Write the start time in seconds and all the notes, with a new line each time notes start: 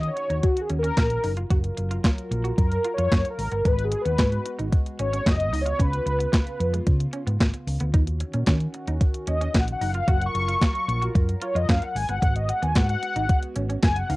Already playing: D#3 C#4 F#4
0.03 closed hi-hat
0.07 C#5
0.17 muted clean electric guitar stroke, closed hi-hat
0.30 D#2 D#4, closed hi-hat
0.43 F#4, muted clean electric guitar stroke, kick, closed hi-hat
0.57 closed hi-hat
0.61 G#4
0.70 D#2 C#4, closed hi-hat
0.79 A#4
0.83 C#4, closed hi-hat
0.97 A#1, muted clean electric guitar stroke, kick, snare, clap, closed hi-hat
1.10 closed hi-hat
1.23 F#1 F#3 D#4 F4 A#4, open hi-hat
1.37 F4, closed hi-hat
1.50 F#1 F#4, kick, closed hi-hat
1.64 closed hi-hat
1.77 F#1, muted clean electric guitar stroke, closed hi-hat
1.91 F4, closed hi-hat
2.04 F4, kick, snare, clap, closed hi-hat
2.18 closed hi-hat
2.31 A#1, muted clean electric guitar stroke, closed hi-hat
2.44 F#4, closed hi-hat
2.58 F#2 A#4, muted clean electric guitar stroke, kick, closed hi-hat
2.72 closed hi-hat
2.85 F4, closed hi-hat
2.94 C#5
2.98 F2 F4, closed hi-hat
3.12 F#2 C#4, kick, snare, clap, closed hi-hat
3.25 muted clean electric guitar stroke, closed hi-hat
3.30 A#4
3.38 G#1 G#3 B3 F#4, open hi-hat
3.52 G1 B3, closed hi-hat
3.65 G#1 G#3 B4, kick, closed hi-hat
3.79 closed hi-hat
3.84 G#4
3.92 muted clean electric guitar stroke, closed hi-hat
4.01 B3 B4
4.05 D#2, closed hi-hat
4.18 G#2 B3, kick, snare, clap, closed hi-hat
4.32 closed hi-hat
4.46 muted clean electric guitar stroke, closed hi-hat
4.59 G#1 D#4, closed hi-hat
4.72 muted clean electric guitar stroke, kick, closed hi-hat
4.86 closed hi-hat
4.99 G#1 C#4 C#5, closed hi-hat
5.13 C#4, closed hi-hat
5.26 F#1 D#5, muted clean electric guitar stroke, kick, snare, clap, closed hi-hat
5.40 closed hi-hat
5.44 D#5
5.53 C#2 C#3 D#4 F4, open hi-hat
5.61 C#5
5.66 F4, closed hi-hat
5.79 C#2 C#4 B4, kick, closed hi-hat
5.94 B4, closed hi-hat
6.06 C#2, muted clean electric guitar stroke, closed hi-hat
6.19 B3, closed hi-hat
6.32 G#3, kick, snare, clap, closed hi-hat
6.47 closed hi-hat
6.60 F2, muted clean electric guitar stroke, closed hi-hat
6.74 G#3, closed hi-hat
6.87 C#3, muted clean electric guitar stroke, kick, closed hi-hat
7.00 closed hi-hat
7.13 C#4, closed hi-hat
7.27 G#2 B3, closed hi-hat
7.40 G#1 G#3, kick, snare, clap, closed hi-hat
7.54 muted clean electric guitar stroke, closed hi-hat
7.67 C#2, open hi-hat
7.80 D2 B3, closed hi-hat
7.94 D#2 D#3 C#4 D#4 F#4, kick, closed hi-hat
8.07 closed hi-hat
8.20 muted clean electric guitar stroke, closed hi-hat
8.33 A#2 C#4, closed hi-hat
8.46 D#3 C#4, kick, snare, clap, closed hi-hat
8.60 closed hi-hat
8.74 muted clean electric guitar stroke, closed hi-hat
8.88 D#2 D#4, closed hi-hat
9.01 muted clean electric guitar stroke, kick, closed hi-hat
9.14 closed hi-hat
9.27 D#2 C#4 D#5, closed hi-hat
9.41 C#4, closed hi-hat
9.54 A#1 F#5, muted clean electric guitar stroke, kick, snare, clap, closed hi-hat
9.68 closed hi-hat
9.72 F#5
9.81 F#1 F#3 D#4 F4 A#4, open hi-hat
9.90 F5, closed hi-hat
9.95 F4
10.08 F#1 F#4 F#5, kick, closed hi-hat
10.22 closed hi-hat
10.26 C#6
10.34 F#1, muted clean electric guitar stroke, closed hi-hat
10.48 F4, closed hi-hat
10.62 F4, kick, snare, clap, closed hi-hat
10.75 closed hi-hat
10.88 A#1, muted clean electric guitar stroke, closed hi-hat
11.02 F#4, closed hi-hat
11.15 F#2, muted clean electric guitar stroke, kick, closed hi-hat
11.29 closed hi-hat
11.41 F4 C#5, closed hi-hat
11.55 F2 F4 D#5, closed hi-hat
11.69 F#2 C#4 F5, kick, snare, clap, closed hi-hat
11.82 F#5, muted clean electric guitar stroke, closed hi-hat
11.95 G#1 G#3 B3 F#4 G#5, open hi-hat
12.09 G1 B3 F#5, closed hi-hat
12.22 G#1 G#3, kick, closed hi-hat
12.36 D#5, closed hi-hat
12.49 F#5, muted clean electric guitar stroke, closed hi-hat
12.62 D#2 B3 G#5, closed hi-hat
12.75 G#2 B3 F#5, kick, snare, clap, closed hi-hat
12.89 F#5, closed hi-hat
13.03 muted clean electric guitar stroke, closed hi-hat
13.16 G#1 D#4, closed hi-hat
13.29 muted clean electric guitar stroke, kick, closed hi-hat
13.42 closed hi-hat
13.55 G#1 C#4, closed hi-hat
13.69 C#4, closed hi-hat
13.83 F#1 G#5, muted clean electric guitar stroke, kick, snare, clap, closed hi-hat
13.96 F#5, closed hi-hat
14.09 C#2 C#3 B3 D#4 F4 F5, open hi-hat